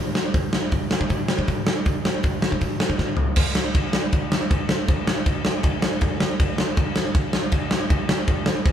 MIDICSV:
0, 0, Header, 1, 2, 480
1, 0, Start_track
1, 0, Tempo, 377834
1, 432, Time_signature, 4, 2, 24, 8
1, 11079, End_track
2, 0, Start_track
2, 0, Title_t, "Drums"
2, 193, Note_on_c, 9, 38, 101
2, 320, Note_off_c, 9, 38, 0
2, 434, Note_on_c, 9, 46, 60
2, 435, Note_on_c, 9, 36, 106
2, 562, Note_off_c, 9, 36, 0
2, 562, Note_off_c, 9, 46, 0
2, 671, Note_on_c, 9, 38, 111
2, 798, Note_off_c, 9, 38, 0
2, 911, Note_on_c, 9, 46, 58
2, 917, Note_on_c, 9, 36, 102
2, 1038, Note_off_c, 9, 46, 0
2, 1044, Note_off_c, 9, 36, 0
2, 1153, Note_on_c, 9, 38, 106
2, 1280, Note_off_c, 9, 38, 0
2, 1281, Note_on_c, 9, 36, 86
2, 1394, Note_on_c, 9, 46, 53
2, 1401, Note_off_c, 9, 36, 0
2, 1401, Note_on_c, 9, 36, 91
2, 1521, Note_off_c, 9, 46, 0
2, 1528, Note_off_c, 9, 36, 0
2, 1632, Note_on_c, 9, 38, 103
2, 1759, Note_off_c, 9, 38, 0
2, 1761, Note_on_c, 9, 36, 83
2, 1878, Note_on_c, 9, 46, 49
2, 1884, Note_off_c, 9, 36, 0
2, 1884, Note_on_c, 9, 36, 90
2, 2005, Note_off_c, 9, 46, 0
2, 2011, Note_off_c, 9, 36, 0
2, 2116, Note_on_c, 9, 38, 107
2, 2243, Note_off_c, 9, 38, 0
2, 2358, Note_on_c, 9, 46, 54
2, 2364, Note_on_c, 9, 36, 110
2, 2486, Note_off_c, 9, 46, 0
2, 2492, Note_off_c, 9, 36, 0
2, 2607, Note_on_c, 9, 38, 106
2, 2734, Note_off_c, 9, 38, 0
2, 2837, Note_on_c, 9, 46, 54
2, 2846, Note_on_c, 9, 36, 109
2, 2964, Note_off_c, 9, 46, 0
2, 2973, Note_off_c, 9, 36, 0
2, 3078, Note_on_c, 9, 38, 104
2, 3204, Note_on_c, 9, 36, 80
2, 3205, Note_off_c, 9, 38, 0
2, 3316, Note_on_c, 9, 46, 57
2, 3323, Note_off_c, 9, 36, 0
2, 3323, Note_on_c, 9, 36, 97
2, 3443, Note_off_c, 9, 46, 0
2, 3450, Note_off_c, 9, 36, 0
2, 3558, Note_on_c, 9, 38, 108
2, 3680, Note_on_c, 9, 36, 83
2, 3685, Note_off_c, 9, 38, 0
2, 3789, Note_on_c, 9, 38, 57
2, 3801, Note_off_c, 9, 36, 0
2, 3801, Note_on_c, 9, 36, 89
2, 3916, Note_off_c, 9, 38, 0
2, 3928, Note_off_c, 9, 36, 0
2, 4022, Note_on_c, 9, 43, 82
2, 4149, Note_off_c, 9, 43, 0
2, 4268, Note_on_c, 9, 49, 125
2, 4268, Note_on_c, 9, 57, 67
2, 4279, Note_on_c, 9, 36, 123
2, 4395, Note_off_c, 9, 49, 0
2, 4395, Note_off_c, 9, 57, 0
2, 4406, Note_off_c, 9, 36, 0
2, 4512, Note_on_c, 9, 38, 118
2, 4639, Note_off_c, 9, 38, 0
2, 4758, Note_on_c, 9, 57, 68
2, 4762, Note_on_c, 9, 36, 119
2, 4885, Note_off_c, 9, 57, 0
2, 4889, Note_off_c, 9, 36, 0
2, 4995, Note_on_c, 9, 38, 118
2, 5122, Note_off_c, 9, 38, 0
2, 5240, Note_on_c, 9, 57, 60
2, 5246, Note_on_c, 9, 36, 113
2, 5367, Note_off_c, 9, 57, 0
2, 5373, Note_off_c, 9, 36, 0
2, 5485, Note_on_c, 9, 38, 117
2, 5612, Note_off_c, 9, 38, 0
2, 5727, Note_on_c, 9, 36, 114
2, 5727, Note_on_c, 9, 57, 64
2, 5854, Note_off_c, 9, 36, 0
2, 5854, Note_off_c, 9, 57, 0
2, 5958, Note_on_c, 9, 38, 112
2, 6085, Note_off_c, 9, 38, 0
2, 6202, Note_on_c, 9, 57, 64
2, 6206, Note_on_c, 9, 36, 122
2, 6329, Note_off_c, 9, 57, 0
2, 6333, Note_off_c, 9, 36, 0
2, 6447, Note_on_c, 9, 38, 121
2, 6574, Note_off_c, 9, 38, 0
2, 6681, Note_on_c, 9, 57, 65
2, 6685, Note_on_c, 9, 36, 117
2, 6808, Note_off_c, 9, 57, 0
2, 6812, Note_off_c, 9, 36, 0
2, 6919, Note_on_c, 9, 38, 116
2, 7047, Note_off_c, 9, 38, 0
2, 7155, Note_on_c, 9, 57, 68
2, 7165, Note_on_c, 9, 36, 119
2, 7282, Note_off_c, 9, 57, 0
2, 7292, Note_off_c, 9, 36, 0
2, 7398, Note_on_c, 9, 38, 121
2, 7525, Note_off_c, 9, 38, 0
2, 7634, Note_on_c, 9, 57, 67
2, 7645, Note_on_c, 9, 36, 115
2, 7761, Note_off_c, 9, 57, 0
2, 7772, Note_off_c, 9, 36, 0
2, 7882, Note_on_c, 9, 38, 106
2, 8009, Note_off_c, 9, 38, 0
2, 8127, Note_on_c, 9, 57, 73
2, 8128, Note_on_c, 9, 36, 125
2, 8254, Note_off_c, 9, 57, 0
2, 8255, Note_off_c, 9, 36, 0
2, 8363, Note_on_c, 9, 38, 110
2, 8490, Note_off_c, 9, 38, 0
2, 8600, Note_on_c, 9, 57, 68
2, 8604, Note_on_c, 9, 36, 117
2, 8727, Note_off_c, 9, 57, 0
2, 8731, Note_off_c, 9, 36, 0
2, 8838, Note_on_c, 9, 38, 109
2, 8965, Note_off_c, 9, 38, 0
2, 9081, Note_on_c, 9, 36, 119
2, 9081, Note_on_c, 9, 57, 64
2, 9208, Note_off_c, 9, 36, 0
2, 9208, Note_off_c, 9, 57, 0
2, 9314, Note_on_c, 9, 38, 107
2, 9441, Note_off_c, 9, 38, 0
2, 9550, Note_on_c, 9, 57, 67
2, 9559, Note_on_c, 9, 36, 108
2, 9677, Note_off_c, 9, 57, 0
2, 9686, Note_off_c, 9, 36, 0
2, 9793, Note_on_c, 9, 38, 119
2, 9920, Note_off_c, 9, 38, 0
2, 10040, Note_on_c, 9, 36, 123
2, 10042, Note_on_c, 9, 57, 68
2, 10167, Note_off_c, 9, 36, 0
2, 10169, Note_off_c, 9, 57, 0
2, 10278, Note_on_c, 9, 38, 123
2, 10405, Note_off_c, 9, 38, 0
2, 10513, Note_on_c, 9, 57, 65
2, 10518, Note_on_c, 9, 36, 118
2, 10640, Note_off_c, 9, 57, 0
2, 10645, Note_off_c, 9, 36, 0
2, 10747, Note_on_c, 9, 38, 115
2, 10874, Note_off_c, 9, 38, 0
2, 10995, Note_on_c, 9, 57, 66
2, 10996, Note_on_c, 9, 36, 124
2, 11079, Note_off_c, 9, 36, 0
2, 11079, Note_off_c, 9, 57, 0
2, 11079, End_track
0, 0, End_of_file